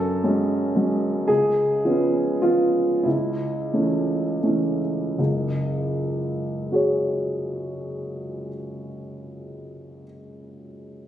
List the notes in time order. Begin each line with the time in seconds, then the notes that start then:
Already playing: F#2 A4
0.24 F#3 G#3 C#4
0.75 F#3 G#3 C#4
1.28 C#2 G#4
1.84 F3 B3 C#4
2.42 F3 B3 C#4 F4
3.03 C#2 E4
3.73 E3 A3 C#4
4.43 E3 A3 C#4
5.18 F#1 C#2
6.72 F#4 G#4 C#5